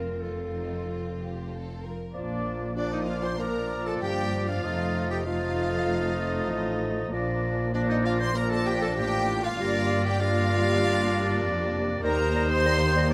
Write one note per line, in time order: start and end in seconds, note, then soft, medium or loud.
0.00 1.90 F1 soft
0.00 1.90 F2 soft
0.00 0.21 C4 soft
0.00 0.21 F4 soft
0.00 0.22 F4 soft
0.00 0.22 A#4 medium
0.21 1.91 C4 soft
0.21 1.91 F4 soft
0.21 0.31 F4 soft
0.21 1.50 A4 soft
0.56 0.87 D#4 soft
0.89 1.20 F4 soft
1.20 1.51 G4 medium
1.52 1.84 A4 medium
1.84 2.15 A#4 medium
2.13 3.98 A#1 medium
2.13 3.98 A#2 medium
2.13 2.72 F3 soft
2.13 2.72 A#3 soft
2.13 2.73 A#3 medium
2.13 2.72 D4 medium
2.13 2.73 F4 medium
2.13 2.73 D5 medium
2.13 2.73 D6 soft
2.76 3.38 F3 soft
2.76 3.38 A#3 medium
2.76 2.94 D4 medium
2.76 2.91 D4 medium
2.76 3.38 D4 medium
2.76 3.38 F4 medium
2.76 3.38 D5 soft
2.76 2.92 D5 medium
2.76 3.38 D6 soft
2.92 3.08 D#4 soft
2.92 3.09 D#4 medium
2.92 2.99 D#4 medium
2.92 3.09 D#5 medium
3.07 3.24 F4 medium
3.07 3.14 F4 medium
3.07 3.24 F4 medium
3.07 3.24 F5 medium
3.23 3.40 C5 medium
3.23 3.30 C5 medium
3.23 3.32 C5 medium
3.23 3.40 C6 medium
3.39 4.61 F3 medium
3.39 4.62 A#3 medium
3.39 4.61 D4 soft
3.39 4.61 F4 medium
3.39 3.85 A#4 medium
3.39 3.86 A#4 medium
3.39 3.88 A#4 medium
3.39 4.65 D5 medium
3.39 3.87 A#5 medium
3.39 4.62 D6 medium
3.86 3.93 A4 medium
3.86 4.01 A4 medium
3.86 4.02 A4 medium
3.86 3.93 A5 medium
4.01 4.64 G1 medium
4.01 4.64 G2 medium
4.01 4.48 G4 medium
4.01 4.48 G5 medium
4.48 5.09 F4 medium
4.48 5.10 F4 medium
4.48 5.11 F4 medium
4.48 5.10 F5 medium
4.64 6.46 F1 medium
4.64 6.46 F2 medium
4.64 5.25 F3 medium
4.64 5.25 A3 medium
4.64 5.25 A3 soft
4.64 5.25 D#4 soft
4.64 5.24 F4 medium
4.64 5.26 D#5 medium
4.64 5.25 A6 medium
5.10 5.17 G4 medium
5.10 5.28 G4 medium
5.10 5.17 G4 medium
5.10 5.26 G5 medium
5.25 7.09 F3 medium
5.25 7.08 A3 medium
5.25 7.09 A3 medium
5.25 7.09 D#4 medium
5.25 7.08 F4 medium
5.25 6.78 F4 medium
5.25 6.81 F4 medium
5.25 6.79 F4 medium
5.25 7.14 D#5 medium
5.25 6.78 F5 medium
5.25 7.09 A6 medium
6.50 7.12 A1 medium
6.50 7.12 A2 medium
7.12 8.94 A#1 medium
7.12 8.94 A#2 medium
7.12 7.73 F3 medium
7.12 7.72 A#3 medium
7.12 7.73 A#3 medium
7.12 7.73 D4 medium
7.12 7.72 F4 medium
7.12 7.73 D5 medium
7.12 7.73 A#6 medium
7.73 8.19 F3 medium
7.73 8.33 A#3 medium
7.73 8.34 A#3 medium
7.73 7.91 D4 medium
7.73 8.34 D4 medium
7.73 7.88 D4 medium
7.73 8.33 F4 medium
7.73 7.80 D5 medium
7.73 8.34 D5 medium
7.73 8.35 A#6 medium
7.89 8.06 D#4 medium
7.89 7.96 D#4 medium
7.89 7.95 D#5 medium
8.05 8.21 F4 medium
8.05 8.19 F4 medium
8.05 8.20 F4 medium
8.05 8.11 F5 medium
8.19 8.34 C5 medium
8.19 8.36 C5 medium
8.19 8.27 C5 medium
8.19 8.35 C6 medium
8.34 9.30 F3 medium
8.34 9.56 A#3 medium
8.34 9.57 A#3 medium
8.34 9.57 D4 medium
8.34 9.56 F4 medium
8.34 8.51 A#4 medium
8.34 8.50 A#4 medium
8.34 8.42 A#4 medium
8.34 9.30 D5 medium
8.34 8.51 A#5 medium
8.34 9.31 A#6 medium
8.50 8.68 A4 medium
8.50 8.58 A4 medium
8.50 8.66 A5 medium
8.65 8.73 G4 medium
8.65 8.81 G4 medium
8.65 8.82 G4 medium
8.65 8.82 G5 medium
8.81 8.88 A4 medium
8.81 8.89 A4 medium
8.81 8.97 A4 medium
8.81 8.98 A5 medium
8.96 9.59 A1 medium
8.96 9.59 A2 medium
8.96 9.44 G4 medium
8.96 9.45 G4 medium
8.96 9.43 G4 medium
8.96 9.43 G5 loud
9.43 10.05 F4 medium
9.43 10.07 F4 medium
9.43 10.05 F4 medium
9.43 10.05 F5 medium
9.59 11.39 G1 medium
9.59 11.39 G2 medium
9.59 10.16 G3 medium
9.59 10.19 A#3 medium
9.59 10.04 A#3 medium
9.59 10.19 D4 medium
9.59 10.04 G4 medium
9.59 10.16 D5 medium
9.59 10.17 A#6 medium
10.04 10.21 G4 medium
10.04 10.20 G4 medium
10.04 10.21 G4 medium
10.04 10.21 G5 medium
10.19 12.01 G3 medium
10.19 12.01 A#3 medium
10.19 12.01 D4 medium
10.19 11.73 F4 medium
10.19 11.71 F4 medium
10.19 12.01 G4 medium
10.19 12.01 D5 medium
10.19 11.74 F5 loud
10.19 12.01 A#6 medium
11.43 12.04 F1 medium
11.43 12.04 F2 medium
12.03 13.13 D#2 medium
12.03 12.17 G3 medium
12.03 13.13 A#3 medium
12.03 13.13 D#4 medium
12.03 13.13 G4 medium
12.03 12.47 A#4 medium
12.03 13.13 C5 medium
12.03 12.48 A#5 medium
12.03 12.11 A#6 medium
12.34 12.48 G3 medium
12.34 12.43 A#6 medium
12.50 13.12 C5 medium
12.50 13.11 C5 medium
12.50 13.11 C6 loud
12.66 12.80 G3 medium
12.66 12.73 A#6 medium
12.96 13.10 G3 medium
12.96 13.04 A#6 medium